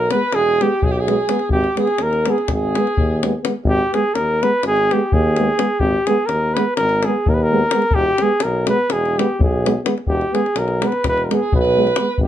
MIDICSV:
0, 0, Header, 1, 7, 480
1, 0, Start_track
1, 0, Key_signature, 5, "minor"
1, 0, Tempo, 475813
1, 1516, Time_signature, 9, 3, 24, 8
1, 12383, End_track
2, 0, Start_track
2, 0, Title_t, "Alto saxophone"
2, 0, Program_c, 0, 65
2, 0, Note_on_c, 0, 70, 77
2, 119, Note_on_c, 0, 71, 80
2, 135, Note_off_c, 0, 70, 0
2, 356, Note_on_c, 0, 68, 81
2, 371, Note_off_c, 0, 71, 0
2, 619, Note_on_c, 0, 67, 67
2, 634, Note_off_c, 0, 68, 0
2, 862, Note_on_c, 0, 68, 79
2, 877, Note_off_c, 0, 67, 0
2, 917, Note_on_c, 0, 67, 64
2, 932, Note_off_c, 0, 68, 0
2, 997, Note_on_c, 0, 68, 73
2, 1012, Note_off_c, 0, 67, 0
2, 1518, Note_off_c, 0, 68, 0
2, 1527, Note_on_c, 0, 67, 66
2, 1782, Note_off_c, 0, 67, 0
2, 1805, Note_on_c, 0, 68, 69
2, 2051, Note_on_c, 0, 70, 62
2, 2067, Note_off_c, 0, 68, 0
2, 2345, Note_on_c, 0, 68, 57
2, 2360, Note_off_c, 0, 70, 0
2, 2540, Note_off_c, 0, 68, 0
2, 2574, Note_on_c, 0, 68, 59
2, 3464, Note_off_c, 0, 68, 0
2, 11486, Note_on_c, 0, 68, 61
2, 11671, Note_off_c, 0, 68, 0
2, 11697, Note_on_c, 0, 71, 86
2, 12296, Note_off_c, 0, 71, 0
2, 12383, End_track
3, 0, Start_track
3, 0, Title_t, "Flugelhorn"
3, 0, Program_c, 1, 56
3, 0, Note_on_c, 1, 70, 83
3, 111, Note_on_c, 1, 71, 92
3, 126, Note_off_c, 1, 70, 0
3, 345, Note_on_c, 1, 68, 100
3, 360, Note_off_c, 1, 71, 0
3, 625, Note_on_c, 1, 67, 86
3, 640, Note_off_c, 1, 68, 0
3, 841, Note_on_c, 1, 68, 75
3, 856, Note_off_c, 1, 67, 0
3, 919, Note_on_c, 1, 67, 71
3, 935, Note_off_c, 1, 68, 0
3, 1021, Note_on_c, 1, 68, 75
3, 1036, Note_off_c, 1, 67, 0
3, 1527, Note_off_c, 1, 68, 0
3, 1533, Note_on_c, 1, 67, 93
3, 1785, Note_off_c, 1, 67, 0
3, 1842, Note_on_c, 1, 68, 83
3, 2040, Note_on_c, 1, 70, 90
3, 2055, Note_off_c, 1, 68, 0
3, 2322, Note_on_c, 1, 68, 71
3, 2337, Note_off_c, 1, 70, 0
3, 2528, Note_off_c, 1, 68, 0
3, 2563, Note_on_c, 1, 68, 79
3, 3458, Note_off_c, 1, 68, 0
3, 3687, Note_on_c, 1, 67, 101
3, 3977, Note_on_c, 1, 68, 85
3, 3992, Note_off_c, 1, 67, 0
3, 4175, Note_on_c, 1, 70, 98
3, 4191, Note_off_c, 1, 68, 0
3, 4465, Note_on_c, 1, 71, 87
3, 4480, Note_off_c, 1, 70, 0
3, 4681, Note_off_c, 1, 71, 0
3, 4705, Note_on_c, 1, 68, 99
3, 4965, Note_on_c, 1, 67, 81
3, 4980, Note_off_c, 1, 68, 0
3, 5179, Note_on_c, 1, 68, 89
3, 5195, Note_off_c, 1, 67, 0
3, 5845, Note_on_c, 1, 67, 90
3, 5861, Note_off_c, 1, 68, 0
3, 6115, Note_on_c, 1, 68, 81
3, 6130, Note_off_c, 1, 67, 0
3, 6313, Note_on_c, 1, 70, 83
3, 6328, Note_off_c, 1, 68, 0
3, 6595, Note_on_c, 1, 71, 77
3, 6610, Note_off_c, 1, 70, 0
3, 6814, Note_off_c, 1, 71, 0
3, 6820, Note_on_c, 1, 70, 100
3, 7112, Note_on_c, 1, 68, 78
3, 7127, Note_off_c, 1, 70, 0
3, 7355, Note_on_c, 1, 70, 80
3, 7371, Note_off_c, 1, 68, 0
3, 7406, Note_on_c, 1, 71, 68
3, 7421, Note_off_c, 1, 70, 0
3, 7493, Note_on_c, 1, 70, 95
3, 7508, Note_off_c, 1, 71, 0
3, 8012, Note_on_c, 1, 67, 101
3, 8027, Note_off_c, 1, 70, 0
3, 8291, Note_on_c, 1, 68, 88
3, 8306, Note_off_c, 1, 67, 0
3, 8501, Note_on_c, 1, 70, 76
3, 8516, Note_off_c, 1, 68, 0
3, 8758, Note_off_c, 1, 70, 0
3, 8765, Note_on_c, 1, 71, 87
3, 8998, Note_on_c, 1, 68, 89
3, 9013, Note_off_c, 1, 71, 0
3, 9260, Note_on_c, 1, 67, 76
3, 9275, Note_off_c, 1, 68, 0
3, 9481, Note_off_c, 1, 67, 0
3, 9510, Note_on_c, 1, 68, 64
3, 9894, Note_off_c, 1, 68, 0
3, 10174, Note_on_c, 1, 67, 90
3, 10433, Note_on_c, 1, 68, 80
3, 10448, Note_off_c, 1, 67, 0
3, 10674, Note_on_c, 1, 70, 78
3, 10689, Note_off_c, 1, 68, 0
3, 10964, Note_on_c, 1, 71, 78
3, 10979, Note_off_c, 1, 70, 0
3, 11163, Note_off_c, 1, 71, 0
3, 11176, Note_on_c, 1, 71, 92
3, 11342, Note_on_c, 1, 70, 50
3, 11357, Note_off_c, 1, 71, 0
3, 11441, Note_on_c, 1, 68, 71
3, 11456, Note_off_c, 1, 70, 0
3, 11649, Note_off_c, 1, 68, 0
3, 11655, Note_on_c, 1, 71, 69
3, 12275, Note_off_c, 1, 71, 0
3, 12337, Note_on_c, 1, 67, 80
3, 12383, Note_off_c, 1, 67, 0
3, 12383, End_track
4, 0, Start_track
4, 0, Title_t, "Trombone"
4, 0, Program_c, 2, 57
4, 106, Note_on_c, 2, 59, 60
4, 197, Note_off_c, 2, 59, 0
4, 606, Note_on_c, 2, 59, 47
4, 697, Note_off_c, 2, 59, 0
4, 1085, Note_on_c, 2, 59, 57
4, 1171, Note_off_c, 2, 59, 0
4, 1308, Note_on_c, 2, 59, 58
4, 1392, Note_off_c, 2, 59, 0
4, 1791, Note_on_c, 2, 59, 50
4, 1879, Note_off_c, 2, 59, 0
4, 2289, Note_on_c, 2, 59, 60
4, 2378, Note_off_c, 2, 59, 0
4, 2810, Note_on_c, 2, 59, 50
4, 2895, Note_off_c, 2, 59, 0
4, 3277, Note_on_c, 2, 59, 47
4, 3358, Note_off_c, 2, 59, 0
4, 3465, Note_on_c, 2, 59, 47
4, 3551, Note_off_c, 2, 59, 0
4, 3962, Note_on_c, 2, 59, 48
4, 4050, Note_off_c, 2, 59, 0
4, 4458, Note_on_c, 2, 59, 58
4, 4546, Note_off_c, 2, 59, 0
4, 4949, Note_on_c, 2, 59, 53
4, 5038, Note_off_c, 2, 59, 0
4, 5429, Note_on_c, 2, 59, 56
4, 5512, Note_off_c, 2, 59, 0
4, 5627, Note_on_c, 2, 59, 64
4, 5712, Note_off_c, 2, 59, 0
4, 6137, Note_on_c, 2, 59, 59
4, 6221, Note_off_c, 2, 59, 0
4, 6616, Note_on_c, 2, 59, 65
4, 6704, Note_off_c, 2, 59, 0
4, 7127, Note_on_c, 2, 59, 59
4, 7211, Note_off_c, 2, 59, 0
4, 7600, Note_on_c, 2, 59, 54
4, 7680, Note_off_c, 2, 59, 0
4, 7795, Note_on_c, 2, 59, 60
4, 7878, Note_off_c, 2, 59, 0
4, 8293, Note_on_c, 2, 59, 57
4, 8377, Note_off_c, 2, 59, 0
4, 8783, Note_on_c, 2, 59, 58
4, 8868, Note_off_c, 2, 59, 0
4, 9270, Note_on_c, 2, 59, 61
4, 9357, Note_off_c, 2, 59, 0
4, 9734, Note_on_c, 2, 59, 59
4, 9818, Note_off_c, 2, 59, 0
4, 9937, Note_on_c, 2, 59, 62
4, 10022, Note_off_c, 2, 59, 0
4, 10418, Note_on_c, 2, 59, 55
4, 10508, Note_off_c, 2, 59, 0
4, 10931, Note_on_c, 2, 59, 60
4, 11017, Note_off_c, 2, 59, 0
4, 11417, Note_on_c, 2, 59, 51
4, 11505, Note_off_c, 2, 59, 0
4, 11874, Note_on_c, 2, 59, 53
4, 11961, Note_off_c, 2, 59, 0
4, 12082, Note_on_c, 2, 59, 50
4, 12169, Note_off_c, 2, 59, 0
4, 12383, End_track
5, 0, Start_track
5, 0, Title_t, "Euphonium"
5, 0, Program_c, 3, 58
5, 132, Note_on_c, 3, 56, 53
5, 218, Note_off_c, 3, 56, 0
5, 621, Note_on_c, 3, 56, 67
5, 709, Note_off_c, 3, 56, 0
5, 1091, Note_on_c, 3, 56, 49
5, 1176, Note_off_c, 3, 56, 0
5, 1294, Note_on_c, 3, 56, 54
5, 1381, Note_off_c, 3, 56, 0
5, 1781, Note_on_c, 3, 56, 59
5, 1872, Note_off_c, 3, 56, 0
5, 2280, Note_on_c, 3, 56, 43
5, 2371, Note_off_c, 3, 56, 0
5, 2786, Note_on_c, 3, 56, 53
5, 2875, Note_off_c, 3, 56, 0
5, 3273, Note_on_c, 3, 56, 48
5, 3356, Note_off_c, 3, 56, 0
5, 3493, Note_on_c, 3, 56, 38
5, 3574, Note_off_c, 3, 56, 0
5, 3982, Note_on_c, 3, 56, 50
5, 4066, Note_off_c, 3, 56, 0
5, 4468, Note_on_c, 3, 56, 51
5, 4554, Note_off_c, 3, 56, 0
5, 4974, Note_on_c, 3, 56, 63
5, 5058, Note_off_c, 3, 56, 0
5, 5442, Note_on_c, 3, 56, 65
5, 5523, Note_off_c, 3, 56, 0
5, 5647, Note_on_c, 3, 56, 49
5, 5728, Note_off_c, 3, 56, 0
5, 6135, Note_on_c, 3, 56, 66
5, 6220, Note_off_c, 3, 56, 0
5, 6628, Note_on_c, 3, 56, 56
5, 6713, Note_off_c, 3, 56, 0
5, 7123, Note_on_c, 3, 56, 61
5, 7208, Note_off_c, 3, 56, 0
5, 7583, Note_on_c, 3, 56, 65
5, 7667, Note_off_c, 3, 56, 0
5, 7816, Note_on_c, 3, 56, 61
5, 7894, Note_off_c, 3, 56, 0
5, 8292, Note_on_c, 3, 56, 65
5, 8376, Note_off_c, 3, 56, 0
5, 8755, Note_on_c, 3, 56, 63
5, 8845, Note_off_c, 3, 56, 0
5, 9262, Note_on_c, 3, 56, 65
5, 9350, Note_off_c, 3, 56, 0
5, 9744, Note_on_c, 3, 56, 67
5, 9826, Note_off_c, 3, 56, 0
5, 9956, Note_on_c, 3, 56, 53
5, 10037, Note_off_c, 3, 56, 0
5, 10434, Note_on_c, 3, 56, 53
5, 10520, Note_off_c, 3, 56, 0
5, 10906, Note_on_c, 3, 56, 47
5, 10997, Note_off_c, 3, 56, 0
5, 11401, Note_on_c, 3, 56, 58
5, 11492, Note_off_c, 3, 56, 0
5, 11876, Note_on_c, 3, 56, 58
5, 11962, Note_off_c, 3, 56, 0
5, 12096, Note_on_c, 3, 56, 41
5, 12180, Note_off_c, 3, 56, 0
5, 12383, End_track
6, 0, Start_track
6, 0, Title_t, "Tuba"
6, 0, Program_c, 4, 58
6, 336, Note_on_c, 4, 28, 71
6, 613, Note_off_c, 4, 28, 0
6, 835, Note_on_c, 4, 35, 85
6, 1208, Note_off_c, 4, 35, 0
6, 1511, Note_on_c, 4, 32, 91
6, 1666, Note_off_c, 4, 32, 0
6, 2012, Note_on_c, 4, 39, 67
6, 2287, Note_off_c, 4, 39, 0
6, 2510, Note_on_c, 4, 32, 76
6, 2785, Note_off_c, 4, 32, 0
6, 3006, Note_on_c, 4, 39, 89
6, 3378, Note_off_c, 4, 39, 0
6, 3677, Note_on_c, 4, 32, 105
6, 3832, Note_off_c, 4, 32, 0
6, 4187, Note_on_c, 4, 39, 67
6, 4459, Note_off_c, 4, 39, 0
6, 4671, Note_on_c, 4, 32, 69
6, 4946, Note_off_c, 4, 32, 0
6, 5173, Note_on_c, 4, 39, 100
6, 5542, Note_off_c, 4, 39, 0
6, 5845, Note_on_c, 4, 32, 99
6, 5998, Note_off_c, 4, 32, 0
6, 6342, Note_on_c, 4, 39, 72
6, 6614, Note_off_c, 4, 39, 0
6, 6845, Note_on_c, 4, 32, 82
6, 7115, Note_off_c, 4, 32, 0
6, 7338, Note_on_c, 4, 39, 102
6, 7704, Note_off_c, 4, 39, 0
6, 8010, Note_on_c, 4, 28, 86
6, 8159, Note_off_c, 4, 28, 0
6, 8511, Note_on_c, 4, 35, 74
6, 8778, Note_off_c, 4, 35, 0
6, 8991, Note_on_c, 4, 28, 75
6, 9263, Note_off_c, 4, 28, 0
6, 9476, Note_on_c, 4, 35, 94
6, 9846, Note_off_c, 4, 35, 0
6, 10162, Note_on_c, 4, 28, 90
6, 10312, Note_off_c, 4, 28, 0
6, 10649, Note_on_c, 4, 35, 82
6, 10921, Note_off_c, 4, 35, 0
6, 11149, Note_on_c, 4, 28, 72
6, 11420, Note_off_c, 4, 28, 0
6, 11635, Note_on_c, 4, 35, 98
6, 12004, Note_off_c, 4, 35, 0
6, 12293, Note_on_c, 4, 32, 91
6, 12383, Note_off_c, 4, 32, 0
6, 12383, End_track
7, 0, Start_track
7, 0, Title_t, "Davul"
7, 106, Note_on_c, 9, 37, 62
7, 207, Note_off_c, 9, 37, 0
7, 327, Note_on_c, 9, 37, 59
7, 428, Note_off_c, 9, 37, 0
7, 491, Note_on_c, 9, 37, 20
7, 592, Note_off_c, 9, 37, 0
7, 616, Note_on_c, 9, 37, 53
7, 717, Note_off_c, 9, 37, 0
7, 830, Note_on_c, 9, 43, 80
7, 931, Note_off_c, 9, 43, 0
7, 1091, Note_on_c, 9, 37, 54
7, 1192, Note_off_c, 9, 37, 0
7, 1300, Note_on_c, 9, 37, 65
7, 1401, Note_off_c, 9, 37, 0
7, 1405, Note_on_c, 9, 37, 25
7, 1506, Note_off_c, 9, 37, 0
7, 1513, Note_on_c, 9, 43, 69
7, 1614, Note_off_c, 9, 43, 0
7, 1653, Note_on_c, 9, 37, 23
7, 1754, Note_off_c, 9, 37, 0
7, 1787, Note_on_c, 9, 37, 59
7, 1888, Note_off_c, 9, 37, 0
7, 1890, Note_on_c, 9, 37, 24
7, 1991, Note_off_c, 9, 37, 0
7, 2001, Note_on_c, 9, 37, 61
7, 2102, Note_off_c, 9, 37, 0
7, 2147, Note_on_c, 9, 37, 25
7, 2248, Note_off_c, 9, 37, 0
7, 2275, Note_on_c, 9, 37, 58
7, 2376, Note_off_c, 9, 37, 0
7, 2401, Note_on_c, 9, 37, 22
7, 2502, Note_off_c, 9, 37, 0
7, 2504, Note_on_c, 9, 37, 61
7, 2504, Note_on_c, 9, 43, 63
7, 2605, Note_off_c, 9, 37, 0
7, 2605, Note_off_c, 9, 43, 0
7, 2778, Note_on_c, 9, 37, 61
7, 2879, Note_off_c, 9, 37, 0
7, 2897, Note_on_c, 9, 37, 23
7, 2998, Note_off_c, 9, 37, 0
7, 3000, Note_on_c, 9, 43, 85
7, 3101, Note_off_c, 9, 43, 0
7, 3259, Note_on_c, 9, 37, 68
7, 3360, Note_off_c, 9, 37, 0
7, 3478, Note_on_c, 9, 37, 68
7, 3579, Note_off_c, 9, 37, 0
7, 3683, Note_on_c, 9, 43, 71
7, 3784, Note_off_c, 9, 43, 0
7, 3973, Note_on_c, 9, 37, 53
7, 4074, Note_off_c, 9, 37, 0
7, 4191, Note_on_c, 9, 37, 58
7, 4292, Note_off_c, 9, 37, 0
7, 4468, Note_on_c, 9, 37, 57
7, 4569, Note_off_c, 9, 37, 0
7, 4674, Note_on_c, 9, 37, 62
7, 4774, Note_off_c, 9, 37, 0
7, 4807, Note_on_c, 9, 37, 25
7, 4907, Note_off_c, 9, 37, 0
7, 4955, Note_on_c, 9, 37, 49
7, 5056, Note_off_c, 9, 37, 0
7, 5166, Note_on_c, 9, 43, 88
7, 5267, Note_off_c, 9, 43, 0
7, 5412, Note_on_c, 9, 37, 53
7, 5512, Note_off_c, 9, 37, 0
7, 5639, Note_on_c, 9, 37, 70
7, 5740, Note_off_c, 9, 37, 0
7, 5848, Note_on_c, 9, 43, 62
7, 5949, Note_off_c, 9, 43, 0
7, 6122, Note_on_c, 9, 37, 55
7, 6222, Note_off_c, 9, 37, 0
7, 6344, Note_on_c, 9, 37, 54
7, 6445, Note_off_c, 9, 37, 0
7, 6624, Note_on_c, 9, 37, 65
7, 6725, Note_off_c, 9, 37, 0
7, 6831, Note_on_c, 9, 37, 69
7, 6932, Note_off_c, 9, 37, 0
7, 6954, Note_on_c, 9, 37, 24
7, 7055, Note_off_c, 9, 37, 0
7, 7088, Note_on_c, 9, 37, 63
7, 7189, Note_off_c, 9, 37, 0
7, 7326, Note_on_c, 9, 43, 91
7, 7427, Note_off_c, 9, 43, 0
7, 7779, Note_on_c, 9, 37, 80
7, 7880, Note_off_c, 9, 37, 0
7, 7890, Note_on_c, 9, 37, 26
7, 7978, Note_on_c, 9, 43, 85
7, 7990, Note_off_c, 9, 37, 0
7, 8079, Note_off_c, 9, 43, 0
7, 8255, Note_on_c, 9, 37, 63
7, 8356, Note_off_c, 9, 37, 0
7, 8476, Note_on_c, 9, 37, 73
7, 8577, Note_off_c, 9, 37, 0
7, 8744, Note_on_c, 9, 37, 68
7, 8845, Note_off_c, 9, 37, 0
7, 8976, Note_on_c, 9, 37, 68
7, 9077, Note_off_c, 9, 37, 0
7, 9134, Note_on_c, 9, 37, 26
7, 9235, Note_off_c, 9, 37, 0
7, 9274, Note_on_c, 9, 37, 64
7, 9375, Note_off_c, 9, 37, 0
7, 9487, Note_on_c, 9, 43, 94
7, 9588, Note_off_c, 9, 43, 0
7, 9748, Note_on_c, 9, 37, 67
7, 9849, Note_off_c, 9, 37, 0
7, 9946, Note_on_c, 9, 37, 73
7, 10047, Note_off_c, 9, 37, 0
7, 10064, Note_on_c, 9, 37, 23
7, 10156, Note_on_c, 9, 43, 64
7, 10165, Note_off_c, 9, 37, 0
7, 10257, Note_off_c, 9, 43, 0
7, 10303, Note_on_c, 9, 37, 20
7, 10404, Note_off_c, 9, 37, 0
7, 10438, Note_on_c, 9, 37, 54
7, 10539, Note_off_c, 9, 37, 0
7, 10554, Note_on_c, 9, 37, 26
7, 10651, Note_off_c, 9, 37, 0
7, 10651, Note_on_c, 9, 37, 59
7, 10752, Note_off_c, 9, 37, 0
7, 10772, Note_on_c, 9, 37, 22
7, 10873, Note_off_c, 9, 37, 0
7, 10914, Note_on_c, 9, 37, 67
7, 11015, Note_off_c, 9, 37, 0
7, 11018, Note_on_c, 9, 37, 28
7, 11119, Note_off_c, 9, 37, 0
7, 11140, Note_on_c, 9, 37, 70
7, 11140, Note_on_c, 9, 43, 61
7, 11241, Note_off_c, 9, 37, 0
7, 11241, Note_off_c, 9, 43, 0
7, 11274, Note_on_c, 9, 37, 24
7, 11374, Note_off_c, 9, 37, 0
7, 11411, Note_on_c, 9, 37, 57
7, 11512, Note_off_c, 9, 37, 0
7, 11626, Note_on_c, 9, 43, 90
7, 11727, Note_off_c, 9, 43, 0
7, 11749, Note_on_c, 9, 37, 21
7, 11850, Note_off_c, 9, 37, 0
7, 11975, Note_on_c, 9, 37, 27
7, 12066, Note_off_c, 9, 37, 0
7, 12066, Note_on_c, 9, 37, 81
7, 12167, Note_off_c, 9, 37, 0
7, 12285, Note_on_c, 9, 43, 74
7, 12383, Note_off_c, 9, 43, 0
7, 12383, End_track
0, 0, End_of_file